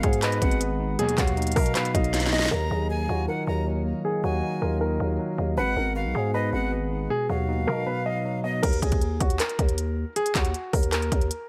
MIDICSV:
0, 0, Header, 1, 8, 480
1, 0, Start_track
1, 0, Key_signature, -6, "minor"
1, 0, Tempo, 382166
1, 1243, Time_signature, 4, 2, 24, 8
1, 14429, End_track
2, 0, Start_track
2, 0, Title_t, "Flute"
2, 0, Program_c, 0, 73
2, 0, Note_on_c, 0, 77, 96
2, 255, Note_off_c, 0, 77, 0
2, 283, Note_on_c, 0, 75, 83
2, 511, Note_off_c, 0, 75, 0
2, 523, Note_on_c, 0, 78, 86
2, 751, Note_off_c, 0, 78, 0
2, 1481, Note_on_c, 0, 77, 89
2, 2872, Note_off_c, 0, 77, 0
2, 2922, Note_on_c, 0, 75, 87
2, 3151, Note_off_c, 0, 75, 0
2, 3164, Note_on_c, 0, 82, 99
2, 3615, Note_off_c, 0, 82, 0
2, 3645, Note_on_c, 0, 80, 79
2, 4095, Note_off_c, 0, 80, 0
2, 4125, Note_on_c, 0, 78, 85
2, 4352, Note_off_c, 0, 78, 0
2, 4363, Note_on_c, 0, 82, 82
2, 4591, Note_off_c, 0, 82, 0
2, 5323, Note_on_c, 0, 80, 88
2, 6000, Note_off_c, 0, 80, 0
2, 7002, Note_on_c, 0, 78, 114
2, 7454, Note_off_c, 0, 78, 0
2, 7484, Note_on_c, 0, 77, 92
2, 7935, Note_off_c, 0, 77, 0
2, 7964, Note_on_c, 0, 75, 85
2, 8192, Note_off_c, 0, 75, 0
2, 8203, Note_on_c, 0, 78, 88
2, 8431, Note_off_c, 0, 78, 0
2, 9162, Note_on_c, 0, 77, 85
2, 10552, Note_off_c, 0, 77, 0
2, 10602, Note_on_c, 0, 75, 80
2, 10831, Note_off_c, 0, 75, 0
2, 14429, End_track
3, 0, Start_track
3, 0, Title_t, "Grand piano"
3, 0, Program_c, 1, 0
3, 37, Note_on_c, 1, 68, 79
3, 224, Note_off_c, 1, 68, 0
3, 289, Note_on_c, 1, 71, 93
3, 1196, Note_off_c, 1, 71, 0
3, 1243, Note_on_c, 1, 68, 113
3, 1428, Note_off_c, 1, 68, 0
3, 1487, Note_on_c, 1, 66, 82
3, 1936, Note_off_c, 1, 66, 0
3, 1958, Note_on_c, 1, 70, 97
3, 2145, Note_off_c, 1, 70, 0
3, 2200, Note_on_c, 1, 71, 87
3, 2386, Note_off_c, 1, 71, 0
3, 2444, Note_on_c, 1, 75, 85
3, 2895, Note_off_c, 1, 75, 0
3, 2922, Note_on_c, 1, 75, 90
3, 3107, Note_off_c, 1, 75, 0
3, 3156, Note_on_c, 1, 70, 94
3, 3344, Note_off_c, 1, 70, 0
3, 3403, Note_on_c, 1, 68, 77
3, 3854, Note_off_c, 1, 68, 0
3, 3877, Note_on_c, 1, 66, 75
3, 4064, Note_off_c, 1, 66, 0
3, 4124, Note_on_c, 1, 70, 81
3, 5034, Note_off_c, 1, 70, 0
3, 5084, Note_on_c, 1, 68, 104
3, 5268, Note_off_c, 1, 68, 0
3, 5324, Note_on_c, 1, 66, 77
3, 5775, Note_off_c, 1, 66, 0
3, 5800, Note_on_c, 1, 70, 72
3, 5986, Note_off_c, 1, 70, 0
3, 6039, Note_on_c, 1, 70, 81
3, 6951, Note_off_c, 1, 70, 0
3, 7003, Note_on_c, 1, 71, 99
3, 7188, Note_off_c, 1, 71, 0
3, 7248, Note_on_c, 1, 70, 72
3, 7697, Note_off_c, 1, 70, 0
3, 7717, Note_on_c, 1, 68, 77
3, 7904, Note_off_c, 1, 68, 0
3, 7966, Note_on_c, 1, 71, 90
3, 8875, Note_off_c, 1, 71, 0
3, 8922, Note_on_c, 1, 68, 107
3, 9107, Note_off_c, 1, 68, 0
3, 9166, Note_on_c, 1, 66, 76
3, 9616, Note_off_c, 1, 66, 0
3, 9638, Note_on_c, 1, 70, 92
3, 9825, Note_off_c, 1, 70, 0
3, 9879, Note_on_c, 1, 71, 87
3, 10065, Note_off_c, 1, 71, 0
3, 10122, Note_on_c, 1, 75, 84
3, 10574, Note_off_c, 1, 75, 0
3, 10601, Note_on_c, 1, 75, 84
3, 10787, Note_off_c, 1, 75, 0
3, 10834, Note_on_c, 1, 70, 97
3, 11023, Note_off_c, 1, 70, 0
3, 11083, Note_on_c, 1, 68, 77
3, 11534, Note_off_c, 1, 68, 0
3, 11556, Note_on_c, 1, 66, 75
3, 11744, Note_off_c, 1, 66, 0
3, 11805, Note_on_c, 1, 70, 83
3, 12714, Note_off_c, 1, 70, 0
3, 12764, Note_on_c, 1, 68, 108
3, 12949, Note_off_c, 1, 68, 0
3, 13004, Note_on_c, 1, 66, 76
3, 13455, Note_off_c, 1, 66, 0
3, 13479, Note_on_c, 1, 70, 74
3, 13665, Note_off_c, 1, 70, 0
3, 13718, Note_on_c, 1, 70, 84
3, 14429, Note_off_c, 1, 70, 0
3, 14429, End_track
4, 0, Start_track
4, 0, Title_t, "Glass harmonica"
4, 0, Program_c, 2, 92
4, 0, Note_on_c, 2, 56, 71
4, 0, Note_on_c, 2, 59, 76
4, 0, Note_on_c, 2, 66, 64
4, 1224, Note_off_c, 2, 56, 0
4, 1224, Note_off_c, 2, 59, 0
4, 1224, Note_off_c, 2, 66, 0
4, 1244, Note_on_c, 2, 63, 65
4, 1244, Note_on_c, 2, 66, 71
4, 1245, Note_on_c, 2, 71, 76
4, 3145, Note_off_c, 2, 63, 0
4, 3145, Note_off_c, 2, 66, 0
4, 3145, Note_off_c, 2, 71, 0
4, 3164, Note_on_c, 2, 66, 66
4, 3164, Note_on_c, 2, 75, 71
4, 3164, Note_on_c, 2, 77, 60
4, 6965, Note_off_c, 2, 66, 0
4, 6965, Note_off_c, 2, 75, 0
4, 6966, Note_off_c, 2, 77, 0
4, 7003, Note_on_c, 2, 56, 65
4, 7003, Note_on_c, 2, 59, 75
4, 7003, Note_on_c, 2, 66, 61
4, 8904, Note_off_c, 2, 56, 0
4, 8904, Note_off_c, 2, 59, 0
4, 8904, Note_off_c, 2, 66, 0
4, 8923, Note_on_c, 2, 63, 61
4, 8923, Note_on_c, 2, 66, 67
4, 8923, Note_on_c, 2, 71, 74
4, 10824, Note_off_c, 2, 63, 0
4, 10824, Note_off_c, 2, 66, 0
4, 10824, Note_off_c, 2, 71, 0
4, 14429, End_track
5, 0, Start_track
5, 0, Title_t, "Tine electric piano"
5, 0, Program_c, 3, 4
5, 0, Control_c, 3, 64, 127
5, 0, Note_on_c, 3, 56, 102
5, 0, Note_on_c, 3, 59, 84
5, 0, Note_on_c, 3, 66, 84
5, 41, Note_on_c, 3, 68, 90
5, 270, Note_off_c, 3, 56, 0
5, 285, Note_on_c, 3, 56, 91
5, 507, Note_off_c, 3, 59, 0
5, 522, Note_on_c, 3, 59, 81
5, 747, Note_off_c, 3, 59, 0
5, 762, Note_on_c, 3, 59, 80
5, 1003, Note_off_c, 3, 66, 0
5, 1005, Note_on_c, 3, 63, 85
5, 1242, Note_off_c, 3, 68, 0
5, 1243, Note_off_c, 3, 59, 0
5, 1244, Note_off_c, 3, 56, 0
5, 1244, Note_off_c, 3, 63, 0
5, 1244, Note_on_c, 3, 47, 94
5, 1260, Control_c, 3, 64, 0
5, 1476, Control_c, 3, 64, 127
5, 1482, Note_on_c, 3, 54, 80
5, 1724, Note_on_c, 3, 63, 93
5, 1964, Note_on_c, 3, 66, 84
5, 2187, Note_off_c, 3, 47, 0
5, 2202, Note_on_c, 3, 47, 96
5, 2430, Note_off_c, 3, 54, 0
5, 2445, Note_on_c, 3, 54, 81
5, 2669, Note_off_c, 3, 54, 0
5, 2684, Note_on_c, 3, 54, 87
5, 2924, Note_off_c, 3, 63, 0
5, 2926, Note_on_c, 3, 59, 80
5, 3161, Note_on_c, 3, 51, 81
5, 3163, Note_off_c, 3, 47, 0
5, 3164, Note_off_c, 3, 54, 0
5, 3164, Note_off_c, 3, 66, 0
5, 3165, Note_off_c, 3, 59, 0
5, 3181, Control_c, 3, 64, 0
5, 3380, Control_c, 3, 64, 127
5, 3400, Note_on_c, 3, 54, 81
5, 3642, Note_on_c, 3, 63, 81
5, 3882, Note_on_c, 3, 65, 80
5, 4106, Note_off_c, 3, 51, 0
5, 4121, Note_on_c, 3, 51, 89
5, 4349, Note_off_c, 3, 54, 0
5, 4364, Note_on_c, 3, 54, 73
5, 4591, Note_off_c, 3, 54, 0
5, 4606, Note_on_c, 3, 54, 87
5, 4843, Note_off_c, 3, 63, 0
5, 4846, Note_on_c, 3, 58, 73
5, 5069, Note_off_c, 3, 51, 0
5, 5083, Note_off_c, 3, 65, 0
5, 5084, Note_on_c, 3, 51, 88
5, 5307, Note_off_c, 3, 54, 0
5, 5322, Note_on_c, 3, 54, 77
5, 5566, Note_on_c, 3, 63, 75
5, 5802, Note_on_c, 3, 65, 82
5, 6023, Note_off_c, 3, 51, 0
5, 6038, Note_on_c, 3, 51, 94
5, 6045, Note_off_c, 3, 58, 0
5, 6264, Note_off_c, 3, 54, 0
5, 6279, Note_on_c, 3, 54, 75
5, 6505, Note_off_c, 3, 54, 0
5, 6521, Note_on_c, 3, 54, 83
5, 6758, Note_on_c, 3, 58, 75
5, 6765, Note_off_c, 3, 63, 0
5, 7001, Note_off_c, 3, 51, 0
5, 7001, Note_off_c, 3, 58, 0
5, 7002, Note_off_c, 3, 54, 0
5, 7003, Note_off_c, 3, 65, 0
5, 7003, Note_on_c, 3, 56, 97
5, 7019, Control_c, 3, 64, 0
5, 7230, Control_c, 3, 64, 127
5, 7244, Note_on_c, 3, 59, 83
5, 7481, Note_on_c, 3, 66, 80
5, 7721, Note_on_c, 3, 68, 86
5, 7949, Note_off_c, 3, 56, 0
5, 7965, Note_on_c, 3, 56, 85
5, 8189, Note_off_c, 3, 59, 0
5, 8204, Note_on_c, 3, 59, 73
5, 8427, Note_off_c, 3, 59, 0
5, 8442, Note_on_c, 3, 59, 75
5, 8682, Note_off_c, 3, 66, 0
5, 8686, Note_on_c, 3, 63, 80
5, 8922, Note_off_c, 3, 68, 0
5, 8923, Note_off_c, 3, 59, 0
5, 8923, Note_on_c, 3, 47, 89
5, 8924, Note_off_c, 3, 56, 0
5, 8924, Note_off_c, 3, 63, 0
5, 8940, Control_c, 3, 64, 0
5, 9161, Note_on_c, 3, 54, 75
5, 9163, Control_c, 3, 64, 127
5, 9403, Note_on_c, 3, 63, 88
5, 9644, Note_on_c, 3, 66, 79
5, 9867, Note_off_c, 3, 47, 0
5, 9882, Note_on_c, 3, 47, 93
5, 10110, Note_off_c, 3, 54, 0
5, 10125, Note_on_c, 3, 54, 80
5, 10349, Note_off_c, 3, 54, 0
5, 10364, Note_on_c, 3, 54, 83
5, 10603, Note_off_c, 3, 63, 0
5, 10606, Note_on_c, 3, 59, 77
5, 10843, Note_off_c, 3, 47, 0
5, 10844, Note_off_c, 3, 54, 0
5, 10844, Note_off_c, 3, 66, 0
5, 10845, Note_off_c, 3, 59, 0
5, 10857, Control_c, 3, 64, 0
5, 14429, End_track
6, 0, Start_track
6, 0, Title_t, "Analog polysynth"
6, 0, Program_c, 4, 90
6, 1243, Note_on_c, 4, 39, 107
6, 1243, Note_on_c, 4, 47, 105
6, 1243, Note_on_c, 4, 54, 107
6, 1447, Note_off_c, 4, 39, 0
6, 1447, Note_off_c, 4, 47, 0
6, 1447, Note_off_c, 4, 54, 0
6, 14429, End_track
7, 0, Start_track
7, 0, Title_t, "808-style bass"
7, 0, Program_c, 5, 38
7, 43, Note_on_c, 5, 44, 111
7, 504, Note_off_c, 5, 44, 0
7, 524, Note_on_c, 5, 32, 110
7, 1215, Note_off_c, 5, 32, 0
7, 1482, Note_on_c, 5, 39, 108
7, 1944, Note_off_c, 5, 39, 0
7, 1963, Note_on_c, 5, 47, 108
7, 2194, Note_off_c, 5, 47, 0
7, 2444, Note_on_c, 5, 35, 106
7, 3135, Note_off_c, 5, 35, 0
7, 3164, Note_on_c, 5, 39, 103
7, 3394, Note_off_c, 5, 39, 0
7, 3403, Note_on_c, 5, 39, 102
7, 3864, Note_off_c, 5, 39, 0
7, 3884, Note_on_c, 5, 39, 104
7, 4114, Note_off_c, 5, 39, 0
7, 4363, Note_on_c, 5, 39, 103
7, 4939, Note_off_c, 5, 39, 0
7, 5324, Note_on_c, 5, 39, 101
7, 5554, Note_off_c, 5, 39, 0
7, 5803, Note_on_c, 5, 39, 104
7, 6264, Note_off_c, 5, 39, 0
7, 6283, Note_on_c, 5, 39, 105
7, 6513, Note_off_c, 5, 39, 0
7, 6763, Note_on_c, 5, 39, 107
7, 6993, Note_off_c, 5, 39, 0
7, 7003, Note_on_c, 5, 32, 108
7, 7233, Note_off_c, 5, 32, 0
7, 7243, Note_on_c, 5, 32, 103
7, 7603, Note_on_c, 5, 35, 100
7, 7622, Note_off_c, 5, 32, 0
7, 7717, Note_off_c, 5, 35, 0
7, 7724, Note_on_c, 5, 44, 101
7, 8184, Note_off_c, 5, 44, 0
7, 8203, Note_on_c, 5, 32, 106
7, 8894, Note_off_c, 5, 32, 0
7, 9163, Note_on_c, 5, 39, 105
7, 9624, Note_off_c, 5, 39, 0
7, 9643, Note_on_c, 5, 47, 109
7, 9874, Note_off_c, 5, 47, 0
7, 10843, Note_on_c, 5, 39, 108
7, 11074, Note_off_c, 5, 39, 0
7, 11082, Note_on_c, 5, 39, 104
7, 11543, Note_off_c, 5, 39, 0
7, 11562, Note_on_c, 5, 39, 110
7, 11793, Note_off_c, 5, 39, 0
7, 12044, Note_on_c, 5, 39, 109
7, 12620, Note_off_c, 5, 39, 0
7, 13002, Note_on_c, 5, 39, 104
7, 13233, Note_off_c, 5, 39, 0
7, 13482, Note_on_c, 5, 39, 108
7, 13944, Note_off_c, 5, 39, 0
7, 13964, Note_on_c, 5, 39, 109
7, 14194, Note_off_c, 5, 39, 0
7, 14429, End_track
8, 0, Start_track
8, 0, Title_t, "Drums"
8, 41, Note_on_c, 9, 42, 73
8, 43, Note_on_c, 9, 36, 98
8, 162, Note_off_c, 9, 42, 0
8, 162, Note_on_c, 9, 42, 58
8, 169, Note_off_c, 9, 36, 0
8, 283, Note_off_c, 9, 42, 0
8, 283, Note_on_c, 9, 39, 111
8, 283, Note_on_c, 9, 42, 89
8, 405, Note_off_c, 9, 42, 0
8, 405, Note_on_c, 9, 42, 48
8, 409, Note_off_c, 9, 39, 0
8, 524, Note_on_c, 9, 36, 99
8, 525, Note_off_c, 9, 42, 0
8, 525, Note_on_c, 9, 42, 77
8, 646, Note_off_c, 9, 42, 0
8, 646, Note_on_c, 9, 42, 49
8, 650, Note_off_c, 9, 36, 0
8, 763, Note_off_c, 9, 42, 0
8, 763, Note_on_c, 9, 42, 80
8, 888, Note_off_c, 9, 42, 0
8, 1243, Note_on_c, 9, 42, 80
8, 1364, Note_off_c, 9, 42, 0
8, 1364, Note_on_c, 9, 42, 55
8, 1482, Note_on_c, 9, 36, 100
8, 1483, Note_on_c, 9, 39, 101
8, 1486, Note_off_c, 9, 42, 0
8, 1486, Note_on_c, 9, 42, 75
8, 1601, Note_off_c, 9, 42, 0
8, 1601, Note_on_c, 9, 42, 63
8, 1608, Note_off_c, 9, 36, 0
8, 1609, Note_off_c, 9, 39, 0
8, 1724, Note_off_c, 9, 42, 0
8, 1724, Note_on_c, 9, 42, 36
8, 1784, Note_off_c, 9, 42, 0
8, 1784, Note_on_c, 9, 42, 45
8, 1844, Note_off_c, 9, 42, 0
8, 1844, Note_on_c, 9, 42, 54
8, 1904, Note_off_c, 9, 42, 0
8, 1904, Note_on_c, 9, 42, 61
8, 1962, Note_on_c, 9, 46, 74
8, 1963, Note_on_c, 9, 36, 100
8, 2030, Note_off_c, 9, 42, 0
8, 2083, Note_on_c, 9, 42, 58
8, 2087, Note_off_c, 9, 46, 0
8, 2089, Note_off_c, 9, 36, 0
8, 2204, Note_off_c, 9, 42, 0
8, 2204, Note_on_c, 9, 39, 106
8, 2204, Note_on_c, 9, 42, 89
8, 2325, Note_off_c, 9, 42, 0
8, 2325, Note_on_c, 9, 42, 50
8, 2329, Note_off_c, 9, 39, 0
8, 2444, Note_on_c, 9, 36, 98
8, 2446, Note_off_c, 9, 42, 0
8, 2446, Note_on_c, 9, 42, 75
8, 2566, Note_off_c, 9, 42, 0
8, 2566, Note_on_c, 9, 42, 49
8, 2570, Note_off_c, 9, 36, 0
8, 2684, Note_off_c, 9, 42, 0
8, 2684, Note_on_c, 9, 38, 62
8, 2684, Note_on_c, 9, 42, 80
8, 2764, Note_off_c, 9, 38, 0
8, 2764, Note_off_c, 9, 42, 0
8, 2764, Note_on_c, 9, 38, 62
8, 2764, Note_on_c, 9, 42, 62
8, 2843, Note_off_c, 9, 38, 0
8, 2843, Note_off_c, 9, 42, 0
8, 2843, Note_on_c, 9, 38, 83
8, 2843, Note_on_c, 9, 42, 46
8, 2923, Note_off_c, 9, 38, 0
8, 2923, Note_on_c, 9, 38, 78
8, 2969, Note_off_c, 9, 42, 0
8, 3003, Note_off_c, 9, 38, 0
8, 3003, Note_on_c, 9, 38, 106
8, 3083, Note_off_c, 9, 38, 0
8, 3083, Note_on_c, 9, 38, 101
8, 3209, Note_off_c, 9, 38, 0
8, 10843, Note_on_c, 9, 36, 112
8, 10843, Note_on_c, 9, 42, 74
8, 10843, Note_on_c, 9, 49, 96
8, 10964, Note_off_c, 9, 42, 0
8, 10964, Note_on_c, 9, 42, 56
8, 10969, Note_off_c, 9, 36, 0
8, 10969, Note_off_c, 9, 49, 0
8, 11082, Note_on_c, 9, 36, 92
8, 11085, Note_off_c, 9, 42, 0
8, 11085, Note_on_c, 9, 42, 73
8, 11200, Note_off_c, 9, 42, 0
8, 11200, Note_on_c, 9, 42, 61
8, 11204, Note_off_c, 9, 36, 0
8, 11204, Note_on_c, 9, 36, 93
8, 11322, Note_off_c, 9, 42, 0
8, 11322, Note_on_c, 9, 42, 57
8, 11329, Note_off_c, 9, 36, 0
8, 11448, Note_off_c, 9, 42, 0
8, 11561, Note_on_c, 9, 42, 72
8, 11562, Note_on_c, 9, 36, 98
8, 11682, Note_off_c, 9, 42, 0
8, 11682, Note_on_c, 9, 42, 57
8, 11688, Note_off_c, 9, 36, 0
8, 11803, Note_off_c, 9, 42, 0
8, 11803, Note_on_c, 9, 39, 107
8, 11803, Note_on_c, 9, 42, 87
8, 11925, Note_off_c, 9, 42, 0
8, 11925, Note_on_c, 9, 42, 47
8, 11928, Note_off_c, 9, 39, 0
8, 12044, Note_on_c, 9, 36, 96
8, 12045, Note_off_c, 9, 42, 0
8, 12045, Note_on_c, 9, 42, 71
8, 12165, Note_off_c, 9, 42, 0
8, 12165, Note_on_c, 9, 42, 50
8, 12169, Note_off_c, 9, 36, 0
8, 12282, Note_off_c, 9, 42, 0
8, 12282, Note_on_c, 9, 42, 79
8, 12408, Note_off_c, 9, 42, 0
8, 12763, Note_on_c, 9, 42, 77
8, 12884, Note_off_c, 9, 42, 0
8, 12884, Note_on_c, 9, 42, 56
8, 13002, Note_on_c, 9, 36, 95
8, 13003, Note_on_c, 9, 39, 102
8, 13005, Note_off_c, 9, 42, 0
8, 13005, Note_on_c, 9, 42, 76
8, 13121, Note_off_c, 9, 42, 0
8, 13121, Note_on_c, 9, 42, 62
8, 13127, Note_off_c, 9, 36, 0
8, 13129, Note_off_c, 9, 39, 0
8, 13243, Note_off_c, 9, 42, 0
8, 13243, Note_on_c, 9, 42, 57
8, 13368, Note_off_c, 9, 42, 0
8, 13481, Note_on_c, 9, 46, 75
8, 13483, Note_on_c, 9, 36, 92
8, 13602, Note_on_c, 9, 42, 54
8, 13607, Note_off_c, 9, 46, 0
8, 13608, Note_off_c, 9, 36, 0
8, 13723, Note_off_c, 9, 42, 0
8, 13723, Note_on_c, 9, 42, 85
8, 13724, Note_on_c, 9, 39, 107
8, 13845, Note_off_c, 9, 42, 0
8, 13845, Note_on_c, 9, 42, 46
8, 13849, Note_off_c, 9, 39, 0
8, 13964, Note_on_c, 9, 36, 94
8, 13965, Note_off_c, 9, 42, 0
8, 13965, Note_on_c, 9, 42, 74
8, 14085, Note_off_c, 9, 42, 0
8, 14085, Note_on_c, 9, 42, 49
8, 14089, Note_off_c, 9, 36, 0
8, 14202, Note_off_c, 9, 42, 0
8, 14202, Note_on_c, 9, 42, 78
8, 14328, Note_off_c, 9, 42, 0
8, 14429, End_track
0, 0, End_of_file